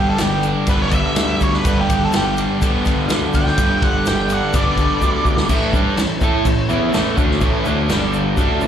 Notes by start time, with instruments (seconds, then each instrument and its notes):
Already playing: picked electric bass G1, overdriven electric guitar G2 D3 G3 B3 D4, distorted electric guitar D3 G3, tonewheel organ G3 B3 D4 B4
0.10 lead electric guitar A4
0.18 picked electric bass G1, overdriven electric guitar G3, lead electric guitar G4, snare, ride, shaker
0.43 overdriven electric guitar D4, ride, shaker
0.67 picked electric bass G1, distorted electric guitar G2 D3, overdriven electric guitar B3, lead electric guitar B4, kick, ride, shaker
0.71 distorted electric guitar G3
0.82 lead electric guitar C#5
0.91 overdriven electric guitar D3, lead electric guitar E5, kick, ride, shaker
1.16 picked electric bass D2, overdriven electric guitar G3, snare, ride, shaker
1.40 picked electric bass D2, overdriven electric guitar D3, lead electric guitar C#5, kick, ride, shaker
1.53 lead electric guitar B4, snare
1.64 picked electric bass G1, overdriven electric guitar G2, distorted electric guitar D3 G3, tonewheel organ G3 B3 D4, kick, ride, shaker
1.81 lead electric guitar G4
1.89 picked electric bass G1, overdriven electric guitar D3, kick, ride, shaker
2.05 lead electric guitar A4
2.11 picked electric bass G1, snare, ride, shaker
2.16 overdriven electric guitar G3, lead electric guitar G4
2.37 overdriven electric guitar D4, ride, shaker
2.62 picked electric bass G1, distorted electric guitar G2 D3 G3, overdriven electric guitar B3, kick, ride, shaker
2.85 kick, ride, shaker
2.90 overdriven electric guitar D3
3.08 picked electric bass D2, overdriven electric guitar G3, snare, ride, shaker
3.33 picked electric bass D2, overdriven electric guitar D3, lead electric guitar G5, kick, ride, shaker
3.47 snare
3.58 picked electric bass G1, overdriven electric guitar G2, distorted electric guitar D3 G3, kick, ride, shaker
3.82 picked electric bass G1, overdriven electric guitar D3, lead electric guitar F#5, kick, ride
4.06 picked electric bass G1, overdriven electric guitar G3, lead electric guitar G5, snare, ride, shaker
4.29 overdriven electric guitar D4, lead electric guitar F#5, ride, shaker
4.54 picked electric bass G1, distorted electric guitar G2 D3 G3, overdriven electric guitar B3, lead electric guitar D5, kick, ride, shaker
4.77 overdriven electric guitar D3, kick, ride, shaker
5.01 picked electric bass D2, overdriven electric guitar G3, kick, shaker
5.25 picked electric bass D2, overdriven electric guitar D3, kick, shaker
5.37 snare
5.49 picked electric bass A1, overdriven electric guitar A2 E3 A3, tonewheel organ A3 C#4 E4 C#5, kick, crash, shaker
5.73 picked electric bass G2, overdriven electric guitar G3 D4 G4, kick, shaker
5.97 picked electric bass A1, overdriven electric guitar A2 E3, snare, crash, shaker
6.21 picked electric bass A2, overdriven electric guitar A3 E4 A4, kick, shaker
6.45 picked electric bass A1, overdriven electric guitar A2 E3, kick, crash, shaker
6.69 picked electric bass E2, overdriven electric guitar E3 B3 E4, shaker
6.94 picked electric bass A1, overdriven electric guitar A2 E3 A3, snare, crash, shaker
7.17 picked electric bass D2, overdriven electric guitar D3 A3 D4, kick, shaker
7.31 snare
7.41 picked electric bass A1, overdriven electric guitar A2 E3 A3, kick, crash, shaker
7.65 picked electric bass D2, overdriven electric guitar D3 A3 D4, shaker
7.89 picked electric bass G1, overdriven electric guitar G2 D3 G3, tonewheel organ D4 G4 D5, snare, crash, shaker
8.13 shaker
8.37 picked electric bass D2, overdriven electric guitar D3 A3 D4, tonewheel organ C#4 E4 A4 E5, kick, crash, shaker
8.61 picked electric bass A1, overdriven electric guitar A2 E3, shaker